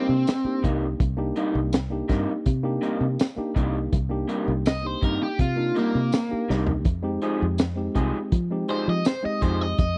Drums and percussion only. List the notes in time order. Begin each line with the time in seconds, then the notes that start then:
0.27 snare, closed hi-hat, tambourine
0.64 kick, closed hi-hat
1.00 kick, closed hi-hat
1.36 closed hi-hat
1.73 snare, closed hi-hat, tambourine
2.09 kick, snare, closed hi-hat
2.46 kick, closed hi-hat
2.83 closed hi-hat
3.19 snare, closed hi-hat, tambourine
3.56 kick, closed hi-hat
3.93 kick, closed hi-hat
4.29 closed hi-hat
4.66 snare, closed hi-hat, tambourine
5.02 kick, closed hi-hat
5.39 kick, closed hi-hat
5.76 closed hi-hat
6.12 snare, closed hi-hat, tambourine
6.50 snare
6.67 floor tom
6.85 kick, closed hi-hat
7.22 closed hi-hat
7.58 snare, closed hi-hat, tambourine
7.95 kick, closed hi-hat
8.32 kick, closed hi-hat
8.68 closed hi-hat
9.05 snare, closed hi-hat, tambourine
9.42 kick, closed hi-hat
9.78 kick, closed hi-hat